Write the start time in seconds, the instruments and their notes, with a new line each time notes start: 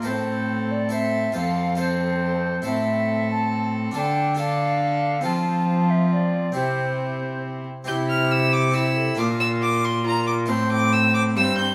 0.02 cello A2, harpsichord A2 E4 A4 C5
0.06 viola C4, violin A4, recorder C5
0.71 recorder D5
0.89 viola C4, harpsichord E4 A4 C5, violin A4, recorder E5
1.32 cello F2, harpsichord F2 F4 A4 C5, recorder F5
1.36 viola C4, violin A4
1.75 harpsichord F4 A4 C5, recorder C5
1.80 viola C4, violin A4
2.62 cello A2, harpsichord A2 E4 A4 C5, viola C4, recorder E5
2.66 violin A4
3.30 recorder A5
3.91 cello D3, harpsichord D3 D4 F4 A4, recorder A5
3.96 viola D4, violin A4, recorder G5
4.35 harpsichord D4 F4 A4, violin A4, recorder F5
4.39 viola D4
5.21 cello F3, harpsichord F3 C4 F4 A4, violin F4, recorder A5
5.25 viola C4
5.90 recorder E5
6.13 recorder D5
6.52 cello C3, harpsichord C3 C4 E4 G4, viola C4, recorder C5
6.56 violin E4
7.84 harpsichord C3 C4 E4 G4, cello C3, viola E4, recorder G4, violin G6
8.09 violin F6
8.31 violin E6
8.53 violin D6
8.71 harpsichord C4 E4 G4, viola E4, recorder G4, violin E6
8.96 recorder A4
9.15 cello A#2, harpsichord A#2 D4 F4 A#4, viola F4, recorder A#4, violin D6
9.40 violin E6
9.62 violin D6
9.84 violin C6
10.05 viola F4, recorder A#4, violin A#5
10.27 violin D6
10.46 harpsichord A2 E4 A4 C5, cello A2, viola C4, recorder C5, violin C6
10.72 violin D6
10.93 violin E6
11.14 violin D6
11.36 harpsichord G2, cello G2, viola C4, recorder C5, violin E6
11.58 violin G6